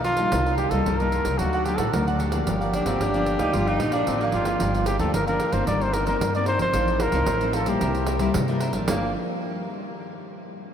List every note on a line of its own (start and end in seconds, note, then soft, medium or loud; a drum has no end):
0.00 0.25 B1 medium
0.00 0.31 F2 medium
0.04 0.55 F4 loud
0.04 0.18 A#4 medium
0.04 0.19 D5 medium
0.04 0.18 F5 medium
0.04 0.17 A5 medium
0.04 pandeiro medium
0.17 0.69 G3 medium
0.17 0.69 A#3 medium
0.17 0.69 D#4 medium
0.17 0.32 D5 soft
0.17 0.32 F5 soft
0.17 0.32 A5 soft
0.17 pandeiro medium
0.32 0.67 C2 loud
0.32 0.84 C3 soft
0.32 0.45 D#4 soft
0.32 0.46 A#4 soft
0.32 0.46 C5 medium
0.32 0.46 D#5 soft
0.32 pandeiro medium
0.46 0.59 A#4 medium
0.46 0.59 C5 medium
0.46 0.59 D#5 medium
0.46 pandeiro soft
0.58 0.72 G4 medium
0.58 muted cavaquinho stroke soft
0.58 pandeiro medium
0.70 0.84 C2 medium
0.70 0.95 G3 medium
0.70 0.96 A#3 medium
0.70 0.96 D#4 medium
0.70 1.00 A4 medium
0.70 0.86 C5 medium
0.70 0.85 D#5 medium
0.70 pandeiro medium
0.74 0.86 A#4 medium
0.86 1.21 C2 medium
0.86 1.38 G2 soft
0.86 0.99 D#4 soft
0.86 1.00 A#4 medium
0.86 1.00 C5 medium
0.86 0.99 D#5 soft
0.86 pandeiro medium
0.99 1.39 G3 medium
0.99 1.39 A#3 medium
0.99 1.39 D#4 medium
0.99 1.40 A#4 loud
0.99 1.26 A#4 soft
0.99 1.25 C5 medium
0.99 1.24 D#5 medium
0.99 pandeiro soft
1.12 pandeiro soft
1.25 1.38 C2 medium
1.25 1.39 A#4 medium
1.25 1.39 C5 medium
1.25 1.38 D#5 medium
1.25 pandeiro medium
1.38 1.74 D2 medium
1.38 1.91 D3 soft
1.38 1.63 F#3 soft
1.38 1.63 A3 soft
1.38 1.53 D4 soft
1.38 1.63 D4 medium
1.38 1.67 F#4 medium
1.38 1.53 A4 soft
1.38 1.53 D5 medium
1.38 1.53 F#5 soft
1.38 pandeiro medium
1.53 1.65 A4 medium
1.53 1.66 D5 medium
1.53 1.66 F#5 medium
1.53 pandeiro soft
1.65 1.83 F#3 medium
1.65 1.83 A3 medium
1.65 1.83 D4 medium
1.65 1.79 G4 medium
1.65 muted cavaquinho stroke soft
1.65 pandeiro medium
1.77 1.94 A1 medium
1.77 1.94 A4 medium
1.77 2.06 A4 medium
1.77 2.06 D5 medium
1.77 2.05 F#5 medium
1.77 pandeiro medium
1.93 2.39 D2 medium
1.93 2.45 A2 medium
1.93 2.30 F#3 medium
1.93 2.30 A3 medium
1.93 2.30 D4 medium
1.93 2.07 A#4 medium
1.93 pandeiro medium
2.07 2.18 A4 medium
2.07 2.19 D5 medium
2.07 2.20 F#5 medium
2.07 pandeiro soft
2.19 2.32 D4 medium
2.19 4.03 G4 loud
2.19 2.32 A4 medium
2.19 2.32 D5 medium
2.19 2.31 F#5 medium
2.19 pandeiro medium
2.32 2.83 F3 medium
2.32 2.83 A#3 medium
2.32 2.83 D4 medium
2.32 2.46 A4 soft
2.32 2.46 D5 soft
2.32 2.45 F#5 soft
2.32 pandeiro medium
2.47 2.82 G1 medium
2.47 2.98 G2 medium
2.47 2.60 G4 soft
2.47 2.60 A#4 soft
2.47 2.60 D5 soft
2.47 2.60 F5 soft
2.47 pandeiro medium
2.61 2.72 A#4 medium
2.61 2.73 D5 medium
2.61 2.73 F5 medium
2.61 pandeiro soft
2.73 2.87 D4 medium
2.73 muted cavaquinho stroke soft
2.73 pandeiro medium
2.86 2.98 G1 medium
2.86 3.09 F3 medium
2.86 3.10 A#3 medium
2.86 3.03 C4 medium
2.86 3.10 D4 medium
2.86 3.00 A#4 soft
2.86 3.00 D5 medium
2.86 2.99 F5 medium
2.86 pandeiro medium
3.00 3.35 G1 medium
3.00 3.51 D3 soft
3.00 3.41 D4 medium
3.00 3.13 G4 medium
3.00 3.13 A#4 medium
3.00 3.14 D5 medium
3.00 3.14 F5 medium
3.00 pandeiro medium
3.14 3.37 F3 medium
3.14 3.37 A#3 medium
3.14 3.37 D4 medium
3.14 3.39 A#4 soft
3.14 3.39 D5 medium
3.14 3.38 F5 medium
3.14 pandeiro soft
3.26 pandeiro medium
3.39 3.51 D2 medium
3.39 3.76 F3 medium
3.39 3.76 A#3 medium
3.39 3.76 D4 medium
3.39 3.55 D#4 medium
3.39 3.53 A#4 medium
3.39 3.53 D5 medium
3.39 3.52 F5 medium
3.39 pandeiro medium
3.53 3.77 G1 medium
3.53 4.05 G2 medium
3.53 3.69 F4 medium
3.53 3.67 G4 soft
3.53 3.67 A#4 soft
3.53 3.67 D5 soft
3.53 3.66 F5 medium
3.53 pandeiro medium
3.67 3.95 D#4 loud
3.67 3.80 A#4 medium
3.67 3.80 D5 medium
3.67 3.80 F5 medium
3.67 pandeiro soft
3.80 4.05 A#1 medium
3.80 4.03 F3 medium
3.80 4.03 A#3 medium
3.80 4.03 D4 medium
3.80 muted cavaquinho stroke soft
3.80 pandeiro medium
3.92 4.09 D4 medium
3.92 4.20 A#4 medium
3.92 4.20 D5 medium
3.92 4.19 F5 medium
3.92 pandeiro medium
4.07 4.32 A1 medium
4.07 4.58 D3 medium
4.07 4.43 F3 medium
4.07 4.44 A#3 medium
4.07 4.23 C4 medium
4.07 4.32 D4 medium
4.07 4.44 D4 medium
4.07 pandeiro medium
4.21 4.61 A#3 medium
4.21 4.34 A#4 soft
4.21 4.34 D5 medium
4.21 4.34 F5 medium
4.21 pandeiro soft
4.32 4.58 G1 medium
4.32 4.83 F4 medium
4.32 4.47 G4 medium
4.32 4.46 A#4 medium
4.32 4.46 D5 medium
4.32 pandeiro medium
4.36 4.46 F5 medium
4.45 4.96 F3 medium
4.45 4.96 A#3 medium
4.45 4.96 D4 medium
4.45 4.60 A#4 soft
4.45 4.60 D5 soft
4.45 4.60 F5 soft
4.45 pandeiro medium
4.60 4.95 G1 medium
4.60 5.12 G2 medium
4.60 4.73 G4 medium
4.60 4.74 A#4 medium
4.60 4.74 D5 medium
4.60 4.73 F5 medium
4.60 pandeiro medium
4.74 4.86 A#4 soft
4.74 4.87 D5 soft
4.74 4.87 F5 soft
4.74 pandeiro soft
4.86 4.98 G4 soft
4.86 5.00 G4 medium
4.86 4.98 A#4 soft
4.86 4.98 D5 medium
4.86 4.99 F5 medium
4.86 pandeiro medium
4.99 5.12 D2 medium
4.99 5.23 F3 medium
4.99 5.23 A#3 medium
4.99 5.23 D4 medium
4.99 5.09 G4 medium
4.99 5.13 A4 medium
4.99 5.09 A#4 medium
4.99 5.09 D5 medium
4.99 5.10 F5 medium
4.99 pandeiro medium
5.14 5.37 G1 medium
5.14 5.65 D3 medium
5.14 5.27 A#4 loud
5.14 pandeiro medium
5.27 5.50 F3 medium
5.27 5.51 A#3 medium
5.27 5.51 D4 medium
5.27 5.54 A#4 loud
5.27 5.39 A#4 soft
5.27 5.40 D5 soft
5.27 5.40 F5 soft
5.27 pandeiro soft
5.40 5.66 G4 medium
5.40 5.67 A#4 medium
5.40 5.67 D5 medium
5.40 5.67 F5 medium
5.40 pandeiro medium
5.52 5.65 G1 medium
5.52 6.03 D#3 medium
5.52 6.03 A#3 medium
5.52 6.04 C4 medium
5.52 5.67 C5 loud
5.52 pandeiro medium
5.67 6.13 G1 medium
5.67 6.19 G2 medium
5.67 5.92 D#4 medium
5.67 5.93 A#4 medium
5.67 5.93 C5 medium
5.67 5.84 D5 medium
5.67 5.94 D#5 medium
5.67 pandeiro medium
5.81 5.95 C5 loud
5.81 pandeiro soft
5.93 6.05 D#4 soft
5.93 6.06 A#4 medium
5.93 6.05 A#4 soft
5.93 6.05 C5 soft
5.93 6.06 D#5 medium
5.93 pandeiro medium
6.06 6.30 D#3 medium
6.06 6.30 A#3 medium
6.06 6.30 C4 medium
6.06 6.16 D#4 medium
6.06 6.16 A#4 medium
6.06 6.32 A#4 medium
6.06 6.16 C5 medium
6.06 6.17 D#5 medium
6.06 pandeiro medium
6.21 6.55 G2 medium
6.21 6.73 G2 medium
6.21 pandeiro medium
6.34 6.58 D#3 medium
6.34 6.58 A#3 medium
6.34 6.58 C4 medium
6.34 6.46 A#4 soft
6.34 6.47 C5 soft
6.34 6.47 D5 medium
6.34 6.47 D#5 medium
6.34 pandeiro soft
6.46 6.60 D#4 medium
6.46 6.60 A#4 medium
6.46 6.60 C5 loud
6.46 6.59 C5 medium
6.46 6.59 D#5 medium
6.46 pandeiro medium
6.59 6.72 G1 medium
6.59 7.10 F3 medium
6.59 7.11 C4 medium
6.59 7.11 D#4 medium
6.59 6.74 A#4 soft
6.59 6.73 C5 soft
6.59 7.04 C5 loud
6.59 6.73 D#5 soft
6.59 pandeiro medium
6.73 7.08 A1 medium
6.73 7.26 A2 medium
6.73 6.87 F4 medium
6.73 6.87 A4 medium
6.73 6.88 C5 medium
6.73 6.88 D#5 medium
6.73 pandeiro medium
6.88 6.99 A4 soft
6.88 7.00 C5 soft
6.88 7.00 D#5 soft
6.88 pandeiro soft
7.00 7.11 F4 medium
7.00 7.12 A4 soft
7.00 7.55 A#4 loud
7.00 7.12 C5 medium
7.00 7.13 D#5 medium
7.00 pandeiro medium
7.12 7.25 C2 medium
7.12 7.37 F3 medium
7.12 7.37 C4 medium
7.12 7.37 D#4 medium
7.12 7.23 F4 medium
7.12 7.23 A4 medium
7.12 7.23 C5 medium
7.12 7.23 D#5 medium
7.12 pandeiro medium
7.26 7.66 A1 medium
7.26 7.79 A2 medium
7.26 pandeiro medium
7.41 7.65 F3 medium
7.41 7.65 C4 medium
7.41 7.65 D#4 medium
7.41 7.52 A4 soft
7.41 7.53 C5 soft
7.41 7.54 D#5 medium
7.41 pandeiro soft
7.53 7.80 F4 medium
7.53 7.80 A4 medium
7.53 7.70 A4 medium
7.53 7.80 C5 medium
7.53 7.81 D#5 medium
7.53 pandeiro medium
7.66 7.79 A#1 medium
7.66 8.17 G3 medium
7.66 8.17 A#3 medium
7.66 8.17 E4 medium
7.66 8.49 G4 medium
7.66 pandeiro medium
7.81 8.27 C2 loud
7.81 8.32 C3 medium
7.81 8.06 E4 medium
7.81 8.07 A#4 medium
7.81 8.07 C5 medium
7.81 8.08 E5 medium
7.81 pandeiro medium
7.95 pandeiro soft
8.06 8.19 E4 medium
8.06 8.19 A#4 medium
8.06 8.19 C5 medium
8.06 8.20 E5 medium
8.06 pandeiro medium
8.19 8.44 G3 medium
8.19 8.44 A#3 medium
8.19 8.30 E4 medium
8.19 8.44 E4 medium
8.19 8.30 A#4 medium
8.19 8.30 C5 medium
8.19 8.30 E5 medium
8.19 pandeiro medium
8.34 8.86 G2 medium
8.34 8.69 C3 medium
8.34 pandeiro loud
8.48 8.71 G3 medium
8.48 8.71 A#3 medium
8.48 8.71 E4 medium
8.48 8.60 A#4 soft
8.48 8.61 C5 medium
8.48 8.61 E5 soft
8.48 pandeiro soft
8.60 8.74 E4 medium
8.60 8.74 A#4 medium
8.60 8.73 C5 medium
8.60 8.72 E5 medium
8.60 pandeiro medium
8.73 8.86 A1 medium
8.73 8.87 F3 medium
8.73 8.88 A#3 medium
8.73 8.88 D4 medium
8.73 8.88 A#4 soft
8.73 8.87 C5 soft
8.73 8.87 E5 medium
8.73 pandeiro medium
8.88 9.13 G1 medium
8.88 9.66 G2 medium
8.88 9.66 F3 medium
8.88 9.13 A#3 medium
8.88 9.66 A#3 medium
8.88 9.66 D4 medium
8.88 9.10 G4 medium
8.88 9.10 A#4 medium
8.88 9.11 D5 medium
8.88 9.11 F5 medium
8.88 pandeiro loud